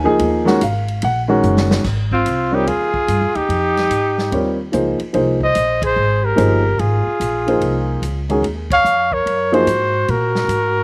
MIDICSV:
0, 0, Header, 1, 7, 480
1, 0, Start_track
1, 0, Tempo, 411805
1, 233, Time_signature, 4, 2, 24, 8
1, 12629, End_track
2, 0, Start_track
2, 0, Title_t, "Trumpet"
2, 0, Program_c, 0, 56
2, 2483, Note_on_c, 0, 65, 78
2, 2962, Note_on_c, 0, 67, 79
2, 2980, Note_off_c, 0, 65, 0
2, 3121, Note_on_c, 0, 68, 92
2, 3139, Note_off_c, 0, 67, 0
2, 3917, Note_on_c, 0, 67, 91
2, 3935, Note_off_c, 0, 68, 0
2, 5352, Note_off_c, 0, 67, 0
2, 6336, Note_on_c, 0, 75, 90
2, 6768, Note_off_c, 0, 75, 0
2, 6823, Note_on_c, 0, 72, 90
2, 7287, Note_on_c, 0, 70, 84
2, 7305, Note_off_c, 0, 72, 0
2, 7924, Note_on_c, 0, 68, 76
2, 7941, Note_off_c, 0, 70, 0
2, 9673, Note_off_c, 0, 68, 0
2, 10173, Note_on_c, 0, 77, 91
2, 10643, Note_on_c, 0, 73, 87
2, 10660, Note_off_c, 0, 77, 0
2, 11123, Note_on_c, 0, 72, 90
2, 11140, Note_off_c, 0, 73, 0
2, 11776, Note_on_c, 0, 70, 82
2, 11794, Note_off_c, 0, 72, 0
2, 12629, Note_off_c, 0, 70, 0
2, 12629, End_track
3, 0, Start_track
3, 0, Title_t, "Alto saxophone"
3, 0, Program_c, 1, 65
3, 2474, Note_on_c, 1, 60, 63
3, 2961, Note_on_c, 1, 63, 70
3, 2979, Note_off_c, 1, 60, 0
3, 3108, Note_on_c, 1, 65, 73
3, 3126, Note_off_c, 1, 63, 0
3, 3907, Note_on_c, 1, 63, 76
3, 3924, Note_off_c, 1, 65, 0
3, 5346, Note_off_c, 1, 63, 0
3, 6339, Note_on_c, 1, 72, 77
3, 6770, Note_off_c, 1, 72, 0
3, 6796, Note_on_c, 1, 68, 74
3, 7258, Note_on_c, 1, 67, 67
3, 7276, Note_off_c, 1, 68, 0
3, 7906, Note_on_c, 1, 65, 68
3, 7924, Note_off_c, 1, 67, 0
3, 9664, Note_off_c, 1, 65, 0
3, 10160, Note_on_c, 1, 73, 80
3, 10637, Note_on_c, 1, 70, 67
3, 10654, Note_off_c, 1, 73, 0
3, 11105, Note_on_c, 1, 66, 72
3, 11123, Note_off_c, 1, 70, 0
3, 11753, Note_off_c, 1, 66, 0
3, 11753, Note_on_c, 1, 66, 66
3, 12629, Note_off_c, 1, 66, 0
3, 12629, End_track
4, 0, Start_track
4, 0, Title_t, "Grand piano"
4, 0, Program_c, 2, 0
4, 0, Note_on_c, 2, 80, 85
4, 48, Note_on_c, 2, 53, 72
4, 56, Note_on_c, 2, 58, 62
4, 58, Note_on_c, 2, 63, 66
4, 65, Note_on_c, 2, 68, 86
4, 214, Note_off_c, 2, 80, 0
4, 527, Note_on_c, 2, 51, 75
4, 536, Note_on_c, 2, 56, 69
4, 544, Note_on_c, 2, 61, 66
4, 552, Note_on_c, 2, 66, 80
4, 669, Note_off_c, 2, 53, 0
4, 673, Note_off_c, 2, 58, 0
4, 674, Note_off_c, 2, 63, 0
4, 678, Note_off_c, 2, 68, 0
4, 685, Note_off_c, 2, 51, 0
4, 690, Note_off_c, 2, 56, 0
4, 694, Note_off_c, 2, 61, 0
4, 698, Note_off_c, 2, 66, 0
4, 735, Note_on_c, 2, 77, 68
4, 1170, Note_off_c, 2, 77, 0
4, 1218, Note_on_c, 2, 78, 86
4, 1399, Note_off_c, 2, 78, 0
4, 1493, Note_on_c, 2, 51, 75
4, 1498, Note_on_c, 2, 56, 64
4, 1505, Note_on_c, 2, 61, 64
4, 1511, Note_on_c, 2, 66, 76
4, 2111, Note_off_c, 2, 51, 0
4, 2113, Note_off_c, 2, 56, 0
4, 2117, Note_off_c, 2, 61, 0
4, 2120, Note_off_c, 2, 66, 0
4, 2930, Note_on_c, 2, 55, 52
4, 2939, Note_on_c, 2, 60, 51
4, 2944, Note_on_c, 2, 65, 49
4, 2949, Note_on_c, 2, 70, 52
4, 2955, Note_on_c, 2, 73, 60
4, 3086, Note_off_c, 2, 55, 0
4, 3090, Note_off_c, 2, 60, 0
4, 3093, Note_off_c, 2, 65, 0
4, 3095, Note_off_c, 2, 70, 0
4, 3098, Note_off_c, 2, 73, 0
4, 5024, Note_on_c, 2, 55, 51
4, 5037, Note_on_c, 2, 60, 45
4, 5043, Note_on_c, 2, 65, 47
4, 5046, Note_on_c, 2, 70, 48
4, 5048, Note_on_c, 2, 73, 55
4, 5311, Note_off_c, 2, 55, 0
4, 5317, Note_off_c, 2, 60, 0
4, 5320, Note_off_c, 2, 65, 0
4, 5322, Note_off_c, 2, 70, 0
4, 5323, Note_off_c, 2, 73, 0
4, 5503, Note_on_c, 2, 53, 55
4, 5512, Note_on_c, 2, 63, 49
4, 5515, Note_on_c, 2, 58, 49
4, 5521, Note_on_c, 2, 68, 46
4, 5523, Note_on_c, 2, 72, 59
4, 5791, Note_off_c, 2, 53, 0
4, 5795, Note_off_c, 2, 63, 0
4, 5797, Note_off_c, 2, 58, 0
4, 5800, Note_off_c, 2, 68, 0
4, 5801, Note_off_c, 2, 72, 0
4, 5981, Note_on_c, 2, 53, 57
4, 5983, Note_on_c, 2, 58, 50
4, 5986, Note_on_c, 2, 63, 52
4, 5995, Note_on_c, 2, 68, 51
4, 5999, Note_on_c, 2, 72, 61
4, 6270, Note_off_c, 2, 53, 0
4, 6271, Note_off_c, 2, 58, 0
4, 6272, Note_off_c, 2, 63, 0
4, 6277, Note_off_c, 2, 68, 0
4, 6279, Note_off_c, 2, 72, 0
4, 7411, Note_on_c, 2, 53, 59
4, 7413, Note_on_c, 2, 58, 53
4, 7418, Note_on_c, 2, 63, 56
4, 7422, Note_on_c, 2, 68, 55
4, 7432, Note_on_c, 2, 72, 61
4, 7705, Note_off_c, 2, 53, 0
4, 7706, Note_off_c, 2, 58, 0
4, 7709, Note_off_c, 2, 63, 0
4, 7710, Note_off_c, 2, 68, 0
4, 7715, Note_off_c, 2, 72, 0
4, 8702, Note_on_c, 2, 53, 52
4, 8711, Note_on_c, 2, 63, 47
4, 8713, Note_on_c, 2, 58, 46
4, 8719, Note_on_c, 2, 68, 46
4, 8724, Note_on_c, 2, 72, 54
4, 9316, Note_off_c, 2, 53, 0
4, 9321, Note_off_c, 2, 63, 0
4, 9322, Note_off_c, 2, 58, 0
4, 9324, Note_off_c, 2, 68, 0
4, 9327, Note_off_c, 2, 72, 0
4, 9666, Note_on_c, 2, 51, 55
4, 9673, Note_on_c, 2, 56, 52
4, 9676, Note_on_c, 2, 61, 54
4, 9681, Note_on_c, 2, 66, 48
4, 9688, Note_on_c, 2, 68, 66
4, 9814, Note_off_c, 2, 51, 0
4, 9818, Note_off_c, 2, 56, 0
4, 9820, Note_off_c, 2, 61, 0
4, 9822, Note_off_c, 2, 66, 0
4, 9826, Note_off_c, 2, 68, 0
4, 11100, Note_on_c, 2, 53, 71
4, 11100, Note_on_c, 2, 58, 67
4, 11108, Note_on_c, 2, 63, 60
4, 11113, Note_on_c, 2, 68, 61
4, 11118, Note_on_c, 2, 72, 72
4, 11252, Note_off_c, 2, 53, 0
4, 11252, Note_off_c, 2, 58, 0
4, 11256, Note_off_c, 2, 63, 0
4, 11258, Note_off_c, 2, 68, 0
4, 11261, Note_off_c, 2, 72, 0
4, 12629, End_track
5, 0, Start_track
5, 0, Title_t, "Upright bass"
5, 0, Program_c, 3, 32
5, 77, Note_on_c, 3, 37, 61
5, 224, Note_off_c, 3, 37, 0
5, 230, Note_on_c, 3, 39, 91
5, 697, Note_off_c, 3, 39, 0
5, 718, Note_on_c, 3, 32, 82
5, 1180, Note_off_c, 3, 32, 0
5, 1200, Note_on_c, 3, 34, 91
5, 1661, Note_off_c, 3, 34, 0
5, 1676, Note_on_c, 3, 30, 94
5, 2139, Note_off_c, 3, 30, 0
5, 2151, Note_on_c, 3, 32, 72
5, 2616, Note_off_c, 3, 32, 0
5, 2629, Note_on_c, 3, 36, 67
5, 3095, Note_off_c, 3, 36, 0
5, 3110, Note_on_c, 3, 39, 69
5, 3576, Note_off_c, 3, 39, 0
5, 3592, Note_on_c, 3, 43, 79
5, 3745, Note_on_c, 3, 41, 47
5, 3763, Note_off_c, 3, 43, 0
5, 3902, Note_off_c, 3, 41, 0
5, 3909, Note_on_c, 3, 39, 54
5, 4058, Note_off_c, 3, 39, 0
5, 4065, Note_on_c, 3, 41, 74
5, 4533, Note_off_c, 3, 41, 0
5, 4551, Note_on_c, 3, 44, 68
5, 5016, Note_off_c, 3, 44, 0
5, 5030, Note_on_c, 3, 39, 76
5, 5496, Note_off_c, 3, 39, 0
5, 5522, Note_on_c, 3, 37, 75
5, 5810, Note_off_c, 3, 37, 0
5, 5998, Note_on_c, 3, 36, 79
5, 6460, Note_off_c, 3, 36, 0
5, 6476, Note_on_c, 3, 34, 76
5, 6939, Note_off_c, 3, 34, 0
5, 6949, Note_on_c, 3, 32, 77
5, 7416, Note_off_c, 3, 32, 0
5, 7436, Note_on_c, 3, 31, 88
5, 7899, Note_off_c, 3, 31, 0
5, 7919, Note_on_c, 3, 32, 80
5, 8208, Note_off_c, 3, 32, 0
5, 8391, Note_on_c, 3, 34, 69
5, 8857, Note_off_c, 3, 34, 0
5, 8865, Note_on_c, 3, 36, 73
5, 9333, Note_off_c, 3, 36, 0
5, 9348, Note_on_c, 3, 37, 79
5, 9811, Note_off_c, 3, 37, 0
5, 9818, Note_on_c, 3, 39, 76
5, 10290, Note_off_c, 3, 39, 0
5, 10309, Note_on_c, 3, 41, 68
5, 10776, Note_off_c, 3, 41, 0
5, 10792, Note_on_c, 3, 42, 74
5, 11257, Note_off_c, 3, 42, 0
5, 11268, Note_on_c, 3, 44, 82
5, 11735, Note_off_c, 3, 44, 0
5, 11755, Note_on_c, 3, 46, 76
5, 12211, Note_off_c, 3, 46, 0
5, 12218, Note_on_c, 3, 44, 74
5, 12629, Note_off_c, 3, 44, 0
5, 12629, End_track
6, 0, Start_track
6, 0, Title_t, "Muted upright bass strokes"
6, 5835, Note_on_c, 9, 29, 35
6, 5952, Note_off_c, 9, 29, 0
6, 8237, Note_on_c, 9, 29, 38
6, 8353, Note_off_c, 9, 29, 0
6, 12629, End_track
7, 0, Start_track
7, 0, Title_t, "Drums"
7, 226, Note_on_c, 9, 51, 61
7, 342, Note_off_c, 9, 51, 0
7, 546, Note_on_c, 9, 38, 51
7, 662, Note_off_c, 9, 38, 0
7, 712, Note_on_c, 9, 44, 59
7, 712, Note_on_c, 9, 51, 70
7, 829, Note_off_c, 9, 44, 0
7, 829, Note_off_c, 9, 51, 0
7, 1028, Note_on_c, 9, 51, 46
7, 1145, Note_off_c, 9, 51, 0
7, 1186, Note_on_c, 9, 51, 72
7, 1303, Note_off_c, 9, 51, 0
7, 1667, Note_on_c, 9, 44, 60
7, 1784, Note_off_c, 9, 44, 0
7, 1828, Note_on_c, 9, 38, 64
7, 1944, Note_off_c, 9, 38, 0
7, 1991, Note_on_c, 9, 38, 89
7, 2107, Note_off_c, 9, 38, 0
7, 2149, Note_on_c, 9, 38, 33
7, 2149, Note_on_c, 9, 49, 59
7, 2151, Note_on_c, 9, 36, 61
7, 2265, Note_off_c, 9, 38, 0
7, 2265, Note_off_c, 9, 49, 0
7, 2268, Note_off_c, 9, 36, 0
7, 2465, Note_on_c, 9, 36, 46
7, 2581, Note_off_c, 9, 36, 0
7, 2631, Note_on_c, 9, 44, 48
7, 2631, Note_on_c, 9, 51, 58
7, 2748, Note_off_c, 9, 44, 0
7, 2748, Note_off_c, 9, 51, 0
7, 3116, Note_on_c, 9, 51, 54
7, 3233, Note_off_c, 9, 51, 0
7, 3425, Note_on_c, 9, 36, 53
7, 3541, Note_off_c, 9, 36, 0
7, 3592, Note_on_c, 9, 44, 43
7, 3592, Note_on_c, 9, 51, 53
7, 3709, Note_off_c, 9, 44, 0
7, 3709, Note_off_c, 9, 51, 0
7, 3907, Note_on_c, 9, 51, 39
7, 4024, Note_off_c, 9, 51, 0
7, 4077, Note_on_c, 9, 51, 53
7, 4193, Note_off_c, 9, 51, 0
7, 4394, Note_on_c, 9, 38, 40
7, 4397, Note_on_c, 9, 51, 36
7, 4511, Note_off_c, 9, 38, 0
7, 4513, Note_off_c, 9, 51, 0
7, 4552, Note_on_c, 9, 44, 48
7, 4552, Note_on_c, 9, 51, 60
7, 4669, Note_off_c, 9, 44, 0
7, 4669, Note_off_c, 9, 51, 0
7, 4874, Note_on_c, 9, 38, 40
7, 4990, Note_off_c, 9, 38, 0
7, 5037, Note_on_c, 9, 51, 51
7, 5154, Note_off_c, 9, 51, 0
7, 5512, Note_on_c, 9, 44, 54
7, 5512, Note_on_c, 9, 51, 50
7, 5628, Note_off_c, 9, 44, 0
7, 5628, Note_off_c, 9, 51, 0
7, 5822, Note_on_c, 9, 51, 43
7, 5939, Note_off_c, 9, 51, 0
7, 5987, Note_on_c, 9, 51, 50
7, 6104, Note_off_c, 9, 51, 0
7, 6300, Note_on_c, 9, 36, 39
7, 6417, Note_off_c, 9, 36, 0
7, 6468, Note_on_c, 9, 44, 57
7, 6468, Note_on_c, 9, 51, 64
7, 6584, Note_off_c, 9, 44, 0
7, 6584, Note_off_c, 9, 51, 0
7, 6783, Note_on_c, 9, 36, 72
7, 6789, Note_on_c, 9, 51, 65
7, 6900, Note_off_c, 9, 36, 0
7, 6905, Note_off_c, 9, 51, 0
7, 7435, Note_on_c, 9, 44, 53
7, 7435, Note_on_c, 9, 51, 61
7, 7551, Note_off_c, 9, 44, 0
7, 7551, Note_off_c, 9, 51, 0
7, 7916, Note_on_c, 9, 51, 47
7, 8033, Note_off_c, 9, 51, 0
7, 8399, Note_on_c, 9, 44, 51
7, 8399, Note_on_c, 9, 51, 57
7, 8516, Note_off_c, 9, 44, 0
7, 8516, Note_off_c, 9, 51, 0
7, 8715, Note_on_c, 9, 51, 43
7, 8831, Note_off_c, 9, 51, 0
7, 8874, Note_on_c, 9, 51, 53
7, 8991, Note_off_c, 9, 51, 0
7, 9355, Note_on_c, 9, 44, 57
7, 9355, Note_on_c, 9, 51, 58
7, 9472, Note_off_c, 9, 44, 0
7, 9472, Note_off_c, 9, 51, 0
7, 9669, Note_on_c, 9, 51, 40
7, 9785, Note_off_c, 9, 51, 0
7, 9838, Note_on_c, 9, 51, 52
7, 9955, Note_off_c, 9, 51, 0
7, 10147, Note_on_c, 9, 36, 69
7, 10156, Note_on_c, 9, 51, 59
7, 10263, Note_off_c, 9, 36, 0
7, 10273, Note_off_c, 9, 51, 0
7, 10317, Note_on_c, 9, 44, 58
7, 10434, Note_off_c, 9, 44, 0
7, 10626, Note_on_c, 9, 36, 41
7, 10742, Note_off_c, 9, 36, 0
7, 10803, Note_on_c, 9, 51, 57
7, 10920, Note_off_c, 9, 51, 0
7, 11115, Note_on_c, 9, 51, 41
7, 11231, Note_off_c, 9, 51, 0
7, 11271, Note_on_c, 9, 44, 58
7, 11271, Note_on_c, 9, 51, 60
7, 11388, Note_off_c, 9, 44, 0
7, 11388, Note_off_c, 9, 51, 0
7, 11753, Note_on_c, 9, 51, 50
7, 11869, Note_off_c, 9, 51, 0
7, 12065, Note_on_c, 9, 38, 47
7, 12182, Note_off_c, 9, 38, 0
7, 12227, Note_on_c, 9, 44, 49
7, 12227, Note_on_c, 9, 51, 52
7, 12343, Note_off_c, 9, 44, 0
7, 12343, Note_off_c, 9, 51, 0
7, 12629, End_track
0, 0, End_of_file